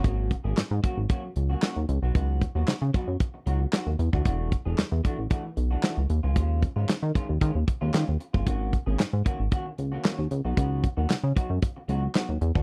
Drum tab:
HH |x-x-x-x-x-x-x-x-|x-x-x-x-x-x-x-x-|x-x-x-x-x-x-x-x-|x-x-x-x-x-x-x-x-|
CP |----x-------x---|----x-------x---|----x-------x---|----x-------x---|
SD |----o-------o---|----o-------o---|----o-------o---|----o-------o---|
BD |o-o---o-o-------|o-o---o-o------o|o-o---o-o-------|o-o---o-o-o----o|

HH |x-x-x-x-x-x-x-x-|x-x-x-x-x-x-x-x-|
CP |----x-------x---|----x-------x---|
SD |----o-------o---|----o-------o---|
BD |o-o---o-o-------|o-o---o-o------o|